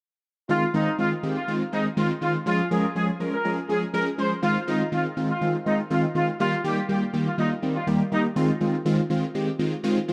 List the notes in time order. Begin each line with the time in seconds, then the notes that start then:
0.49 D#3 G#3 C4 F4
0.74 D#3 G#3 C4 D#4
0.98 D#3 G#3 C4 F4
1.23 D#3 G#3 C4 G4
1.36 F4
1.48 D#3 G#3 C4 F4
1.73 D#3 G#3 C4 D#4 G#4
1.97 D#3 G#3 C4 F4
2.21 D#3 G#3 C4 F4
2.46 F3 G#3 C#4 F4 G#4
2.71 F3 G#3 C#4 G#4 A#4
2.95 F3 G#3 C#4 G#4
3.20 F3 G#3 C#4 A#4
3.32 A#4
3.44 F3 G#3 C#4 G#4
3.69 F3 G#3 C#4 G#4
3.94 F3 G#3 C#4 G#4 A#4
4.18 F3 G#3 C#4 G#4 C5
4.42 D#3 G#3 C4 F4
4.67 D#3 G#3 C4 D#4 F4
4.92 D#3 G#3 C4 F4
5.17 D#3 G#3 C4 F4
5.29 F4
5.41 D#3 G#3 C4 F4
5.66 D#3 G#3 C4 D#4 F4
5.90 D#3 G#3 C4 F4
6.15 D#3 G#3 C4 F4
6.40 D#3 G3 A#3 F4 G4
6.64 D#3 G3 A#3 G4
6.89 D#3 G3 A#3 G4
7.13 D#3 G3 A#3 G4
7.26 F4
7.38 D#3 G3 A#3 D#4 F4
7.62 D#3 G3 A#3 C4
7.75 F4
7.87 D#3 G3 A#3 G4
8.12 D#3 G3 A#3 D#4 G4
8.36 D#3 G#3 C4 F4
8.61 D#3 G#3 C4 F4
8.85 D#3 G#3 C4 F4
9.10 D#3 G#3 C4 F4
9.34 D#3 G#3 C4 G4
9.59 D#3 G#3 C4 F4
9.83 D#3 G#3 C4 F4
10.08 D#3 G#3 C4 F4